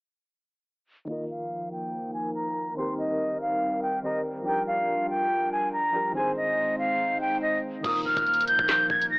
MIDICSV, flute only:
0, 0, Header, 1, 2, 480
1, 0, Start_track
1, 0, Tempo, 422535
1, 1230, Time_signature, 4, 2, 24, 8
1, 10436, End_track
2, 0, Start_track
2, 0, Title_t, "Flute"
2, 0, Program_c, 0, 73
2, 1233, Note_on_c, 0, 75, 86
2, 1421, Note_off_c, 0, 75, 0
2, 1475, Note_on_c, 0, 77, 77
2, 1924, Note_off_c, 0, 77, 0
2, 1950, Note_on_c, 0, 79, 90
2, 2402, Note_off_c, 0, 79, 0
2, 2426, Note_on_c, 0, 80, 89
2, 2617, Note_off_c, 0, 80, 0
2, 2665, Note_on_c, 0, 82, 88
2, 3119, Note_off_c, 0, 82, 0
2, 3151, Note_on_c, 0, 84, 81
2, 3340, Note_off_c, 0, 84, 0
2, 3389, Note_on_c, 0, 75, 80
2, 3841, Note_off_c, 0, 75, 0
2, 3876, Note_on_c, 0, 77, 86
2, 4325, Note_off_c, 0, 77, 0
2, 4348, Note_on_c, 0, 79, 81
2, 4538, Note_off_c, 0, 79, 0
2, 4590, Note_on_c, 0, 75, 78
2, 4779, Note_off_c, 0, 75, 0
2, 5068, Note_on_c, 0, 79, 89
2, 5258, Note_off_c, 0, 79, 0
2, 5309, Note_on_c, 0, 77, 79
2, 5761, Note_off_c, 0, 77, 0
2, 5791, Note_on_c, 0, 79, 87
2, 6242, Note_off_c, 0, 79, 0
2, 6275, Note_on_c, 0, 80, 80
2, 6463, Note_off_c, 0, 80, 0
2, 6507, Note_on_c, 0, 82, 86
2, 6960, Note_off_c, 0, 82, 0
2, 6989, Note_on_c, 0, 80, 78
2, 7179, Note_off_c, 0, 80, 0
2, 7229, Note_on_c, 0, 75, 81
2, 7681, Note_off_c, 0, 75, 0
2, 7708, Note_on_c, 0, 77, 88
2, 8160, Note_off_c, 0, 77, 0
2, 8192, Note_on_c, 0, 79, 82
2, 8381, Note_off_c, 0, 79, 0
2, 8427, Note_on_c, 0, 75, 88
2, 8617, Note_off_c, 0, 75, 0
2, 8912, Note_on_c, 0, 87, 94
2, 9101, Note_off_c, 0, 87, 0
2, 9156, Note_on_c, 0, 89, 79
2, 9605, Note_off_c, 0, 89, 0
2, 9628, Note_on_c, 0, 91, 102
2, 10081, Note_off_c, 0, 91, 0
2, 10106, Note_on_c, 0, 92, 91
2, 10297, Note_off_c, 0, 92, 0
2, 10346, Note_on_c, 0, 94, 97
2, 10436, Note_off_c, 0, 94, 0
2, 10436, End_track
0, 0, End_of_file